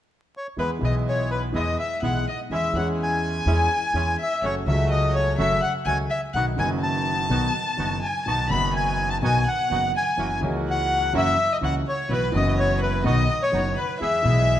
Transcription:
0.37 bandoneon C#5
0.57 grand piano E2 E3 G#3 B3 G#4, upright bass E2, bandoneon G#3 B3 E4 B4, violin B4
0.79 upright bass B1, grand piano B1 B2 E3 G#3 B3 G#4, bandoneon G#3 B3 E4
0.85 violin D#5, bandoneon D#5
1.08 bandoneon C#5, violin C#5
1.31 bandoneon B4, violin B4
1.52 grand piano E2 E3 G#3 B3 G#4, upright bass E2, bandoneon G#3 B3 E4 D#5, violin D#5
1.80 bandoneon E5, violin E5
2.02 grand piano B1 B2 E3 G#3 B3 G#4, upright bass B1, bandoneon G#3 B3 E4 F#5, violin F#5
2.28 violin D#5, bandoneon D#5
2.50 upright bass E2, grand piano E2 E3 G#3 C#4 G#4, bandoneon G#3 C#4 E4, violin E5
2.54 bandoneon E5
2.73 upright bass E2, grand piano E2 E3 G#3 C#4, bandoneon G#3 C#4 E4, violin F#5
2.78 grand piano G#4, bandoneon F#5
3.00 violin G#5, bandoneon G#5
3.46 upright bass E2, grand piano E2 E3 G#3 C#4 G#4, bandoneon G#3 C#4 E4
3.93 upright bass E2, grand piano E2 E3 G#3 C#4 G#4, bandoneon G#3 C#4 E4
4.20 violin E5, bandoneon E5
4.42 upright bass F#1, grand piano F#2 C#3 F#3 A3 F#4, bandoneon A3 C#4 F#4 C#5, violin C#5
4.66 upright bass C#2, grand piano C#2 C#3 F#3 A3, bandoneon A3 C#4 F#4 E5, violin E5
4.71 grand piano F#4
4.91 violin D#5, bandoneon D#5
5.15 violin C#5, bandoneon C#5
5.38 upright bass F#1, grand piano F#2 C#3 F#3 A3 F#4, bandoneon A3 C#4 F#4 E5, violin E5
5.61 violin F#5, bandoneon F#5
5.85 upright bass C#2, grand piano C#2 C#3 F#3 A3 F#4, bandoneon A3 C#4 F#4 G#5, violin G#5
6.10 violin E5, bandoneon E5
6.33 upright bass B1, grand piano B1 B2 D#3 F#3 B3 F#4, bandoneon B3 D#4 F#4 F#5, violin F#5
6.56 upright bass F#1, grand piano F#1 F#2 D#3 F#3 B3 F#4, bandoneon B3 D#4 F#4 G#5, violin G#5
6.82 violin A5, bandoneon A5
7.29 upright bass B1, grand piano B1 B2 D#3 F#3 B3 F#4, bandoneon B3 D#4 F#4
7.77 grand piano F#1 F#2 D#3 F#3 B3 F#4, upright bass F#1, bandoneon B3 D#4 F#4
8.02 violin G#5, bandoneon G#5
8.26 grand piano B1 B2 D#3 F#3 B3 F#4, upright bass B1, bandoneon B3 D#4 F#4 A5, violin A5
8.47 grand piano F#1 F#2 D#3 F#3 B3, upright bass F#1, bandoneon B3 D#4 F#4 B5, violin B5
8.52 grand piano F#4
8.75 violin G#5, bandoneon G#5
9.10 violin A5, bandoneon A5
9.22 grand piano B1 B2 D#3 F#3 B3 F#4, upright bass B1, bandoneon B3 D#4 F#4 G#5, violin G#5
9.47 violin F#5, bandoneon F#5
9.70 grand piano F#1 F#2 D#3 F#3 B3 F#4, upright bass F#1, bandoneon B3 D#4 F#4
9.96 violin G#5, bandoneon G#5
10.17 upright bass F#1, grand piano F#2 E3 F#3 A#3 C#4 F#4, bandoneon A#3 E4 F#4
10.41 upright bass C#2, grand piano C#2 C#3 E3 A#3 C#4 F#4, bandoneon A#3 E4 F#4
10.70 violin F#5, bandoneon F#5
11.13 upright bass F#1, grand piano F#2 E3 F#3 A#3 C#4 F#4, bandoneon A#3 E4 F#4
11.18 violin E5, bandoneon E5
11.52 violin D#5, bandoneon D#5
11.61 upright bass C#2, grand piano C#2 C#3 E3 A#3 C#4 F#4, bandoneon A#3 E4 F#4 F#5, violin F#5
11.87 violin C#5, bandoneon C#5
12.09 upright bass B1, grand piano B1 B2 E3 F#3 B3 F#4, bandoneon B3 E4 F#4, violin B4
12.13 bandoneon B4
12.32 upright bass F#1, grand piano F#1 F#2 E3 F#3 B3 F#4, bandoneon B3 E4 F#4, violin D#5
12.37 bandoneon D#5
12.58 violin C#5, bandoneon C#5
12.82 violin B4, bandoneon B4
13.04 grand piano B1 B2 D#3 F#3 B3 F#4, upright bass B1, bandoneon B3 D#4 F#4 D#5, violin D#5
13.42 violin C#5, bandoneon C#5
13.52 grand piano F#1 F#2 D#3 F#3 B3 F#4, upright bass F#1, bandoneon B3 D#4 F#4
13.77 violin B4, bandoneon B4
14.00 grand piano E2 E3 G#3 B3 G#4, upright bass E2, bandoneon B3 E4 G#4 E5, violin E5
14.22 grand piano B1 B2 E3 G#3 B3, upright bass B1, bandoneon B3 E4 G#4
14.27 grand piano G#4

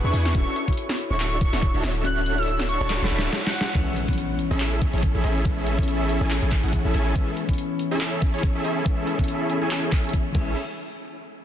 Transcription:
Already playing: clean electric guitar B3 D4 F#4 G#4
0.04 808-style bass E2, supersaw synth D4 E4 G#4 B4 E5, soft synth lead C#6
0.13 808-style bass E2, supersaw synth D4 E4 G#4 B4 G#5, open hi-hat
0.25 snare
0.34 808-style bass D1, clean electric guitar C#4 E4 F#4 A4, supersaw synth D4 F#4 A4 C#5 E5, soft synth lead C#6, kick, closed hi-hat
0.56 closed hi-hat
0.66 clean electric guitar E4 F#4 C#5, kick, closed hi-hat
0.70 clean electric guitar A4, closed hi-hat
0.77 closed hi-hat
0.89 snare
0.99 closed hi-hat
1.10 808-style bass D1, supersaw synth D4 F#4 A4 C#5 E5, soft synth lead C#6
1.20 clap, closed hi-hat
1.41 soft synth lead C#6, kick, closed hi-hat
1.53 808-style bass D1, supersaw synth D4 F#4 A4 C#5 E5, snare, closed hi-hat
1.58 closed hi-hat
1.62 kick, closed hi-hat
1.74 808-style bass D1, supersaw synth D4 F#4 A4 C#5 E5
1.84 808-style bass D1, supersaw synth D4 F#4 A4 C#5 E5, snare, open hi-hat
2.04 clean electric guitar C#4 E4 F#4 A4, soft synth lead F#6, closed hi-hat
2.26 closed hi-hat
2.36 clean electric guitar E4 F#4 C#5, soft synth lead E6, closed hi-hat
2.40 clean electric guitar A4, closed hi-hat
2.47 closed hi-hat
2.59 snare
2.69 soft synth lead C#6, closed hi-hat
2.81 808-style bass D1, supersaw synth D4 F#4 A4 C#5 A5
2.90 snare, clap, closed hi-hat
3.02 808-style bass D1, supersaw synth D4 F#4 A4 C#5 A5, soft synth lead B5, snare
3.11 808-style bass D1, supersaw synth D4 F#4 A4 C#5 E5, closed hi-hat
3.19 snare
3.23 closed hi-hat
3.28 closed hi-hat
3.33 snare, closed hi-hat
3.45 soft synth lead F#5, snare
3.54 open hi-hat
3.61 snare
3.74 808-style bass A1, clean electric guitar E3 G#3 B3 C#4, supersaw synth C#4 E4 G#4 A4 E5, kick, closed hi-hat, crash, impact
3.96 closed hi-hat
4.06 clean electric guitar E3 B3, kick, closed hi-hat
4.10 clean electric guitar C#4, closed hi-hat
4.18 closed hi-hat
4.39 closed hi-hat
4.51 808-style bass A1, supersaw synth C#4 E4 G#4 A4 E5
4.60 clap, closed hi-hat
4.81 kick, closed hi-hat
4.93 808-style bass A1, supersaw synth C#4 E4 G#4 A4 C#5, closed hi-hat
4.98 closed hi-hat
5.03 kick, closed hi-hat
5.15 808-style bass A1, supersaw synth C#4 E4 G#4 A4 E5
5.24 808-style bass A1, supersaw synth C#4 E4 G#4 A4 E5, closed hi-hat
5.44 clean electric guitar E3 G#3 B3 C#4, kick, closed hi-hat
5.66 closed hi-hat
5.76 clean electric guitar E3 B3 C#4, kick, closed hi-hat
5.83 closed hi-hat
5.88 closed hi-hat
6.09 closed hi-hat
6.21 808-style bass A1, supersaw synth C#4 E4 G#4 A4 G#5
6.30 clap, closed hi-hat
6.42 808-style bass A1, supersaw synth C#4 E4 G#4 A4 G#5
6.52 kick, clap, closed hi-hat
6.64 808-style bass A1, supersaw synth C#4 E4 G#4 A4 F#5, closed hi-hat
6.68 closed hi-hat
6.73 kick, closed hi-hat
6.85 808-style bass A1, supersaw synth C#4 E4 G#4 A4 E5
6.94 808-style bass A1, supersaw synth C#4 E4 G#4 A4 G#5, closed hi-hat
7.14 clean electric guitar E3 G#3 B3 C#4, kick, closed hi-hat
7.37 closed hi-hat
7.47 clean electric guitar E3 B3, kick, closed hi-hat
7.51 clean electric guitar C#4, closed hi-hat
7.58 closed hi-hat
7.79 closed hi-hat
7.91 supersaw synth C#4 E4 G#4 A4 E5
8.01 clap, closed hi-hat
8.22 kick, closed hi-hat
8.34 supersaw synth C#4 E4 G#4 A4 C#5, closed hi-hat
8.38 closed hi-hat
8.43 kick, closed hi-hat
8.55 supersaw synth C#4 E4 G#4 A4 E5
8.64 supersaw synth C#4 E4 G#4 A4 E5, closed hi-hat
8.85 clean electric guitar E3 G#3 B3 C#4, kick, closed hi-hat
9.07 closed hi-hat
9.17 clean electric guitar E3 B3, kick, closed hi-hat
9.21 clean electric guitar C#4, closed hi-hat
9.28 closed hi-hat
9.50 closed hi-hat
9.61 supersaw synth C#4 E4 G#4 A4 G#5
9.71 clap, closed hi-hat
9.83 supersaw synth C#4 E4 G#4 A4 G#5
9.92 kick, clap, closed hi-hat
10.04 closed hi-hat
10.09 closed hi-hat
10.13 kick, closed hi-hat
10.32 808-style bass A1, clean electric guitar E3 G#3, supersaw synth C#4 E4 G#4 A4 E5, kick, crash
10.36 clean electric guitar B3 C#4

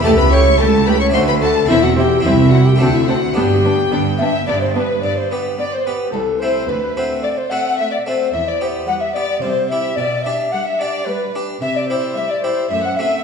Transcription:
0.01 harpsichord A3 E4 G4, recorder A4
0.05 harpsichord C#2, cello section C#2, double bass section C#2, viola section A3, violin section G4 A5
0.17 recorder B4, violin section B5
0.32 viola section A3, violin section G4 C#6, recorder C#5
0.59 cello section C#2, harpsichord C#2, double bass section C#2, viola section A3, violin section G4 A5, recorder A4
0.87 viola section A3, violin section G4 B5, recorder B4
1.00 recorder C#5, violin section C#6
1.10 harpsichord A3 D4 F#4, recorder C5
1.14 harpsichord D2, double bass section D2, cello section D2, viola section A3, violin section F#4 C6
1.27 recorder B4, violin section B5
1.40 viola section A3, violin section F#4 A5, recorder A4
1.66 cello section E2, harpsichord C4 E4, recorder E4, violin section E5
1.70 double bass section E1, harpsichord E2, viola section C4, violin section E4
1.83 recorder F#4, violin section F#5
1.97 viola section C4, violin section E4 G5, recorder G4
2.20 harpsichord C4 E4
2.24 double bass section C2, cello section C2, harpsichord C2, viola section C4, recorder E4, violin section E4 E5
2.51 viola section C4, violin section E4 F#5, recorder F#4
2.65 recorder G4, violin section G5
2.76 double bass section D2, harpsichord A3 C4 D4, recorder F#4
2.80 harpsichord D2, cello section D2, viola section C4, violin section D4 F#5
2.92 recorder E4, violin section E5
3.08 viola section C4, violin section D4 F#5, recorder F#4
3.34 double bass section G1, harpsichord G2 B3 D4, cello section G2, viola section B3, violin section D4 G5, recorder G4
3.63 viola section B3, violin section D4
3.91 double bass section G1, cello section G2, harpsichord G2, viola section B3, violin section D4
4.18 viola section B3, violin section D4 E5, recorder E5
4.46 double bass section G1, harpsichord G2, cello section G2, viola section B3, violin section D4 D5, recorder D5
4.60 recorder C5, violin section C5
4.76 viola section B3, violin section D4 B4, recorder B4
5.03 cello section G2, harpsichord G2, recorder D5, violin section D5
5.18 recorder C5, violin section C5
5.31 harpsichord B3 G4, recorder B4, violin section B4
5.59 viola section B3, violin section D4 D5, recorder D5
5.72 violin section C5, recorder C5
5.85 harpsichord B3 G4, recorder B4, violin section B4
6.13 cello section C2, harpsichord C2, viola section C4, violin section E4 A4, recorder A4
6.40 harpsichord A3 C4 E4, recorder C5, violin section C5
6.68 cello section D2, harpsichord D2, recorder B4, violin section B4
6.96 harpsichord A3 C4 F#4, recorder C5, violin section C5
7.23 viola section A3, violin section F#4 D5, recorder D5
7.37 violin section C5, recorder C5
7.50 harpsichord A3 C4 F#4, recorder F#5, violin section F#5
7.78 viola section A3, violin section F#4 E5, recorder E5
7.92 violin section D5, recorder D5
8.06 harpsichord A3 C4 F#4, violin section C5, recorder C5
8.33 cello section E2, harpsichord E2, recorder E5, violin section E5
8.47 violin section D5, recorder D5
8.61 harpsichord B3 G4, recorder C5, violin section C5
8.87 viola section G3, violin section E4 F#5, recorder F#5
9.01 recorder E5, violin section E5
9.14 harpsichord B3 G4, recorder D5, violin section D5
9.42 harpsichord C3, cello section C3, viola section G3, violin section E4 C5, recorder C5
9.70 harpsichord E4 G4, violin section E5, recorder E5
9.96 cello section B2, harpsichord B2, recorder D5, violin section D5
10.23 harpsichord D4 G4, recorder E5, violin section E5
10.52 viola section G3, violin section D4 F#5, recorder F#5
10.66 violin section E5, recorder E5
10.80 harpsichord D4 G4, recorder D5, violin section D5
11.07 viola section G3, violin section D4 B4, recorder B4
11.35 harpsichord D4 G4
11.61 cello section C3, harpsichord C3, recorder E5, violin section E5
11.76 violin section D5, recorder D5
11.89 harpsichord E4 G4, violin section C5, recorder C5
12.16 viola section G3, violin section E4 E5, recorder E5
12.30 violin section D5, recorder D5
12.44 harpsichord E4 G4, violin section C5, recorder C5
12.70 cello section F#2, harpsichord F#2, viola section A3, violin section C4 E5, recorder E5
12.84 violin section F#5, recorder F#5
12.97 harpsichord A3 C4 F#4, recorder E5, violin section E5

